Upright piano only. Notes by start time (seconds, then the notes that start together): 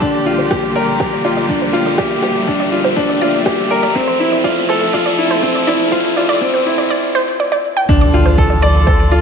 0.02 D4
0.26 F4
0.51 G4
0.76 A#4
1.00 G4
1.25 F4
1.49 D4
1.73 F4
1.98 G4
2.22 G4
2.47 D4
2.72 F4
2.96 D4
3.21 F4
3.46 G4
3.71 A#4
3.95 C4
4.20 E4
4.44 F4
4.69 A4
4.94 F4
5.18 E4
5.43 C4
5.67 E4
5.92 F4
6.17 F4
6.41 C4
6.66 E4
7.89 D4
8.14 F4
8.38 A4
8.63 D5
8.87 A4
9.12 F4